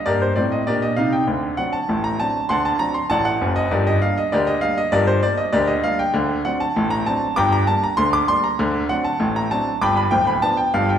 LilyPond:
<<
  \new Staff \with { instrumentName = "Grand piano" } { \time 2/4 \key g \minor \tempo 4 = 98 <g' bes' d''>16 c''16 d''16 ees''16 <g' bes' d''>16 ees''16 f''16 g''16 | r8 fis''16 a''8 bes''16 a''8 | <fis'' a'' c'''>16 a''16 bes''16 c'''16 <d'' fis'' a''>16 fis''8 ees''16 | <g' bes' d''>16 ees''16 f''16 ees''16 <g' bes' d''>16 ees''16 f''16 ees''16 |
<g' bes' d''>16 c''16 d''16 ees''16 <g' bes' d''>16 ees''16 f''16 g''16 | r8 fis''16 a''8 bes''16 a''8 | <g'' bes'' d'''>16 bes''16 a''16 bes''16 c'''16 d'''16 c'''16 bes''16 | r8 fis''16 a''8 bes''16 a''8 |
<g'' b'' d'''>16 b''16 g''16 b''16 a''16 g''16 f''16 g''16 | }
  \new Staff \with { instrumentName = "Grand piano" } { \clef bass \time 2/4 \key g \minor <g, bes>8 <a, c'>8 <bes, d'>8 <c ees'>8 | <d, d>8 <fis c' d'>8 <a,, a,>8 <fis c' d'>8 | <d, d>8 <fis c' d'>8 <a,, a,>8 <fis,, fis,>8 | <g,, g,>8 <g bes d'>8 <d, d>8 <g bes d'>8 |
<g,, g,>8 <g bes d'>8 <d, d>8 <g bes d'>8 | <d, d>8 <fis c' d'>8 <a,, a,>8 <fis c' d'>8 | <g,, g,>8 <g bes d'>8 <d, d>8 <g bes d'>8 | <d, d>8 <fis c' d'>8 <a,, a,>8 <fis c' d'>8 |
<g,, g,>8 <d,, d,>8 <f b d'>8 <g,, g,>8 | }
>>